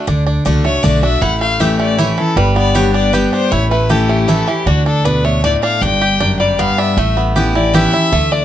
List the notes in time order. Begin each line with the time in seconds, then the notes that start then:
0.07 D2 D3 D4
0.27 D4
0.45 C#2 D3 A3 D4 F#4
0.64 A3 D4 F#4 C#5
0.83 B1 D3 A3 D4 F#4 D5
1.02 D4 F#4 E5
1.21 A1 A2 E4 F#5
1.41 A3 F5
1.60 E3 A3 C#4 E4 G4 E5
1.80 A3 D5
1.98 E3 A3 C#4 E4 C#5
2.17 E3 C#4 E4 A4
2.36 G1 G2 G3 B4
2.56 B3 D5
2.75 G3 B3 D4 G4 C#5
2.94 D4 D5
3.13 G3 B3 D4 G4 B4
3.32 D4 C5
3.51 A1 A2 E4 C#5
3.71 A3 B4
3.90 E3 A3 C#4 E4 G4 A4
4.09 A3 G4
4.28 E3 A3 C#4 E4 A4
4.47 E3 C#4 E4 G4
4.66 D2 D3 D4 F#4
4.86 D4 A4
5.05 B2 D4 B4
5.25 A3 C#5
5.44 A2 D4 D5
5.63 D4 F5
5.82 G1 G2 D4 G5
6.01 G4
6.20 F#2 D4
6.40 G3 D5
6.59 G2 B3 F5
6.78 D4 E5
6.97 A1 A2 A3
7.17 B3
7.36 E3 B3 C#4 E4 G4
7.55 C#4 E4 D5
7.74 E3 B3 C#4 E4 G4 E5
7.93 C#4 E4
8.12 D2 D3 A3
8.32 D4 D5